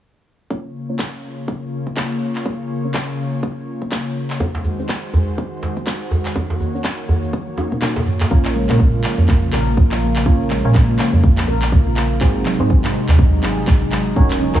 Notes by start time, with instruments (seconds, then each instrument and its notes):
0.51 analog synth pad C#3 A#3 F4 C#5, synth stab A#3 C#4 F4 A#4 C#5, kick
0.89 synth stab A#3 C#4 F4 A#4 C#5
0.99 kick, clap
1.48 kick
1.87 kick
1.97 kick, clap
2.36 clap
2.46 synth stab A#3 C#4 F4 A#4 C#5, kick
2.85 synth stab A#3 C#4 F4 A#4 C#5
2.94 kick, clap
3.43 kick
3.82 kick
3.92 kick, clap
4.30 clap
4.40 analog synth pad D#3 G#3 F#4 C5, synth stab C4 D#4 F#4 G#4 C5, kick, djembe tone, shaker
4.55 djembe slap
4.64 djembe tone, shaker
4.79 synth stab C4 D#4 F#4 G#4 C5, shaker
4.89 kick, clap, shaker
5.13 djembe tone, djembe bass, shaker
5.28 shaker
5.38 kick, shaker
5.62 djembe slap, shaker
5.76 kick, shaker
5.87 kick, clap, shaker
6.11 djembe tone, shaker
6.25 clap, shaker
6.35 analog synth pad A#3 C#5, synth stab C#4 D#4 F#4 A#4 C#5, kick, djembe tone, shaker
6.50 djembe slap
6.60 djembe tone, shaker
6.74 synth stab C#4 D#4 F#4 A#4 C#5, shaker
6.84 kick, clap, shaker
7.09 djembe tone, djembe bass, shaker
7.23 shaker
7.33 kick, high tom, shaker
7.47 high tom
7.58 synth stab C#4 D#4 F#4 A#4 F5, high tom, djembe slap, shaker
7.72 synth stab C#4 D#4 F#4 A#4 C5, kick, mid tom, shaker
7.81 synth stab C#4 D#4 F#4 A#4 C#5, kick, clap, mid tom, shaker
7.96 mid tom, djembe slap
8.06 mid tom, shaker
8.21 clap, mid tom, djembe slap, shaker
8.31 fm bass A#1, analog synth pad C#3 F3 A#3 F4, handpan A#3, synth stab A#3 C#4 F4 A#4 C#5, kick
8.45 clap
8.55 handpan G#3
8.69 fm bass A#2, handpan A#3, synth stab A#3 C#4 F4 A#4 C#5, clap
8.80 kick
8.94 handpan F4
9.04 handpan A#3, clap
9.18 fm bass F2
9.28 handpan F4, kick, clap
9.53 fm bass A#1, handpan A#4, clap
9.67 handpan A#3
9.77 handpan F4, kick
9.92 fm bass A#1, handpan F4, clap
10.02 handpan A#3
10.16 clap
10.26 fm bass A#1, synth stab A#3 C#4 F4 A#4 C#5, kick
10.50 handpan G#3, clap
10.65 fm bass A#2, synth stab A#3 C#4 F4 A#4 C#5, handpan A#3
10.75 kick, clap
10.89 handpan F4
10.99 handpan A#3, clap
11.13 fm bass F2
11.23 handpan F4, kick
11.38 clap
11.48 fm bass A#1, handpan A#4
11.62 handpan A#3, clap
11.72 handpan F4, kick
11.86 fm bass A#1, handpan F4
11.97 handpan A#3, clap
12.21 fm bass G#1, analog synth pad C3 F#3 G#3 D#4, handpan G#3, synth stab C4 D#4 F#4 G#4 C5, kick, clap
12.46 handpan F#3, clap
12.60 fm bass G#2, handpan G#3, synth stab C4 D#4 F#4 G#4 C5
12.70 kick
12.84 handpan D#4, clap
12.94 handpan G#3
13.09 fm bass D#2, clap
13.19 handpan D#4, kick
13.43 fm bass G#1, handpan G#4, clap
13.57 handpan G#3
13.67 handpan D#4, kick, clap
13.82 fm bass G#1, handpan D#4
13.91 handpan G#3, clap
14.16 fm bass D#1, analog synth pad C#3 F#3 A#3, synth stab C#4 D#4 F#4 A#4 C#5, handpan D#4, kick
14.31 clap
14.41 handpan C#4
14.55 fm bass D#2, synth stab C#4 D#4 F#4 A#4 C#5, clap